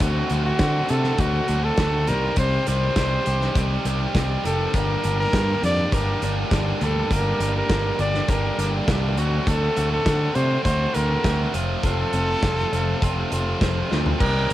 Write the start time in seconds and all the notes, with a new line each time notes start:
0.00 D2 D3 A3 C4 F#4, kick, closed hi-hat
0.30 D2 D3 A3 C4 F#4, closed hi-hat
0.46 F#4
0.59 D3 A3 C4 F#4, kick, snare, closed hi-hat
0.89 C3 D3 A3 C4 F#4 A4, closed hi-hat
1.04 snare
1.18 D2 D3 A3 C4 F#4, kick, closed hi-hat
1.48 D2 D3 A3 C4 F#4, closed hi-hat
1.64 A4
1.77 D2 D3 A3 C4 F#4, kick, snare, closed hi-hat
2.07 C2 C3 D#3 G3 C4 G4 A#4, closed hi-hat
2.36 C2 C3 D#3 G3 C4 G4 C5, kick, closed hi-hat
2.66 C2 C3 D#3 G3 C4 G4 C5, closed hi-hat
2.95 C2 C3 D#3 G3 C4 G4, kick, snare, closed hi-hat
3.25 C2 C3 D#3 G3 C4 G4, closed hi-hat
3.41 snare
3.55 C2 C3 D#3 G3 C4 G4, kick, closed hi-hat
3.85 C2 C3 D#3 G3 C4 G4, closed hi-hat
4.15 C2 C3 D#3 G3 C4 G4, kick, snare, closed hi-hat
4.44 F1 C3 D#3 G3 C4 G4 A4, closed hi-hat
4.74 G1 G2 D3 G3 A#3 D4 G4 A#4, kick, closed hi-hat
5.03 G1 G2 D3 G3 A#3 D4 G4, closed hi-hat
5.20 A#4
5.32 G2 D3 G3 A#3 D4 G4, kick, snare, closed hi-hat
5.63 F2 G2 D3 G3 A#3 D4 G4 D5, closed hi-hat
5.92 G1 G2 D3 G3 A#3 D4 G4 A#4, kick, closed hi-hat
6.21 G1 G2 D3 G3 A#3 D4 G4, closed hi-hat
6.51 G1 G2 D3 G3 A#3 D4 G4, kick, snare, closed hi-hat
6.81 D2 G2 D3 G3 A#3 D4 G4 A4, closed hi-hat
7.11 G1 G2 D3 G3 A#3 D4 G4 A#4, kick, closed hi-hat
7.40 G1 G2 D3 G3 A#3 D4 G4, closed hi-hat
7.58 A#4
7.69 G1 G2 D3 G3 A#3 D4 G4, kick, snare, closed hi-hat
7.99 G1 G2 D3 G3 A#3 D4 G4 D5, closed hi-hat
8.14 snare
8.28 G1 G2 D3 G3 A#3 D4 G4 A#4, kick, closed hi-hat
8.58 G1 G2 D3 G3 A#3 D4 G4, closed hi-hat
8.88 C2 G2 D3 G3 A#3 D4 G4, kick, snare, closed hi-hat
9.16 D2 D3 A3 C4 F#4, closed hi-hat
9.46 D2 D3 A3 C4 F#4 A4, kick, closed hi-hat
9.75 D2 D3 A3 C4 F#4, closed hi-hat
9.92 A4
10.05 D3 A3 C4 F#4, kick, snare, closed hi-hat
10.35 C3 D3 A3 C4 F#4 C5, closed hi-hat
10.64 D2 D3 A3 C4 F#4 C5, kick, closed hi-hat
10.94 D2 D3 A3 C4 F#4 A#4, closed hi-hat
11.23 D2 D3 A3 C4 F#4, kick, snare, closed hi-hat
11.53 F1 F2 C3 F3 A3 C4 F4, closed hi-hat
11.83 F1 F2 C3 F3 A3 C4 F4 A4, kick, closed hi-hat
12.13 F1 F2 C3 F3 A3 C4 F4, closed hi-hat
12.42 F1 F2 C3 F3 A3 C4 F4, kick, snare, closed hi-hat
12.72 F1 F2 C3 F3 A3 C4 F4, closed hi-hat
13.01 F1 F2 C3 F3 A3 C4 F4, kick, closed hi-hat
13.31 F1 F2 C3 F3 A3 C4 F4, closed hi-hat
13.60 F1 F2 C3 F3 A3 C4 F4, kick, snare, closed hi-hat
13.90 D2 F2 C3 F3 A3 C4 F4, snare
14.06 floor tom
14.19 C2 C3 D#3 G3 C4 G4 A#4, kick, crash
14.50 closed hi-hat